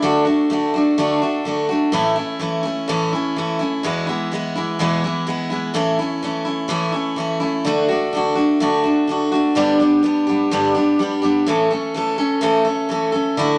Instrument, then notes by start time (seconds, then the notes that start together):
steel-string acoustic guitar
0.02 D3 A3 D4 F#4
0.25 A3 D4 F#4
0.50 D3 A3 D4 F#4
0.74 A3 D4 F#4
0.98 D3 A3 D4 F#4
1.22 A3 D4 F#4
1.45 D3 A3 D4 F#4
1.69 A3 D4 F#4
1.92 A2 E3 A3 C#4 E4
2.16 A3 C#4 E4
2.39 E3 A3 C#4 E4
2.63 A3 C#4 E4
2.88 A2 E3 A3 C#4 E4
3.13 A3 C#4 E4
3.36 E3 A3 C#4 E4
3.59 A3 C#4 E4
3.83 E2 B2 E3 G#3 B3 E4
4.07 E3 G#3 B3 E4
4.32 E3 G#3 B3 E4
4.55 E3 G#3 B3 E4
4.79 E2 B2 E3 G#3 B3 E4
5.04 E3 G#3 B3 E4
5.27 E3 G#3 B3 E4
5.50 E3 G#3 B3 E4
5.74 A2 E3 A3 C#4 E4
5.99 A3 C#4 E4
6.23 E3 A3 C#4 E4
6.45 A3 C#4 E4
6.68 A2 E3 A3 C#4 E4
6.92 A3 C#4 E4
7.16 E3 A3 C#4 E4
7.40 A3 C#4 E4
7.65 D3 A3 D4 F#4
7.88 A3 D4 F#4
8.13 D3 A3 D4 F#4
8.35 A3 D4 F#4
8.60 D3 A3 D4 F#4
8.84 A3 D4 F#4
9.07 D3 A3 D4 F#4
9.32 A3 D4 F#4
9.55 G2 D3 G3 B3 D4 G4
9.80 G3 B3 D4 G4
10.03 G3 B3 D4 G4
10.27 B3 D4 G4
10.31 G3
10.51 G2 D3 G3 B3 D4 G4
10.75 G3 B3 D4 G4
10.99 G3 B3 D4 G4
11.22 G3 B3 D4 G4
11.46 A2 E3 A3 C#4 A4
11.71 A3 C#4 A4
11.94 E3 A3 C#4 A4
12.18 A3 C#4 A4
12.41 A2 E3 A3 C#4 A4
12.65 C#4 A4
12.69 A3
12.89 E3 A3 C#4 A4
13.12 A3 C#4 A4
13.37 D3 A3 E4 F#4